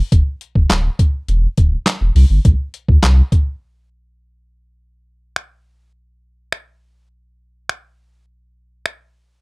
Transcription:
0.12 sub bass E1, kick, closed hi-hat
0.41 closed hi-hat
0.55 sub bass E1, kick
0.70 sub bass D1, snare, clap, closed hi-hat
0.99 kick, closed hi-hat
1.28 sub bass E1, closed hi-hat
1.57 sub bass D1, kick, closed hi-hat
1.86 snare, clap, closed hi-hat
2.01 sub bass E1
2.15 sub bass C2, open hi-hat
2.30 sub bass G1
2.45 sub bass C2, kick, closed hi-hat
2.74 closed hi-hat
2.88 sub bass D2, kick
3.03 sub bass C2, snare, clap, closed hi-hat
3.32 kick, closed hi-hat
5.36 finger snap
6.52 finger snap
7.69 finger snap
8.86 finger snap

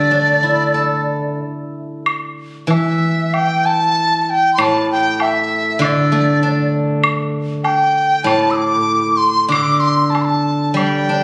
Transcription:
Already playing: guzheng D3 A3, dizi D5
0.11 guzheng D4
0.43 guzheng E4
0.74 guzheng A4
2.06 high woodblock
2.67 guzheng E3, dizi E5, high woodblock, low woodblock
3.34 dizi G5, high woodblock
3.66 dizi A5
4.22 dizi A5
4.30 dizi G5
4.54 guzheng A2, dizi C6
4.59 dizi A5, high woodblock
4.92 dizi G5
5.20 dizi E5, high woodblock, low woodblock
5.79 guzheng D3, high woodblock
5.84 dizi D5
6.12 guzheng A3
6.43 guzheng D4
7.04 high woodblock
7.64 dizi G5, high woodblock, low woodblock
8.24 guzheng A2, dizi A5, high woodblock
8.51 dizi D6 E6
9.17 dizi C6
9.48 guzheng D3, dizi D6, high woodblock
9.80 dizi C6
10.10 dizi A5
10.15 high woodblock, low woodblock
10.21 dizi A5 C6
10.71 guzheng G3, dizi A5
10.75 dizi G5, high woodblock
11.09 guzheng D4

